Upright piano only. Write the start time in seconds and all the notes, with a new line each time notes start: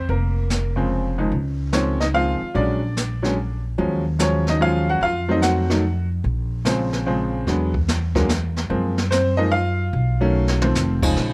0.10 A#3 A#4
0.76 C#3 F3 G#3 C4
1.18 C#2 D#3 F3 G#3 D#4
1.72 D#3 F3 G#3 C4 C#4 C#5
2.00 D#4 D#5
2.14 D#3 F3 G#3 C4 F4 F5
2.54 D3 F#3 G#3 C#4 D4 D5
3.22 D3 F#3 G#3 C#4
3.78 F3 F#3 G#3 C#4
4.19 F3 F#3 G#3 C#4 C#5
4.49 D#4 D#5
4.61 F3 F#3 G#3 C#4 F4 F5
4.89 F#4 F#5
5.03 F4 F5
5.28 D#3 F#3 A3 C4 D#5
5.33 D#4
5.42 F#4 F#5
5.69 D#3 F#3 A3 D#4
6.65 C#3 F3 G#3 C4
7.06 C#3 F3 G#3 C4
7.47 D3 F#3 G#3 B3
8.16 D3 F#3 G#3 A#3
8.70 F3 G#3 A#3 C4
9.11 C4 C5
9.37 F3 G#3 A#3 D#4 D#5
9.52 F4 F5
10.21 D#3 F#3 A3 C#4
10.62 D#3 F3 A3 C4
11.03 C#3 F3 G#3 D#4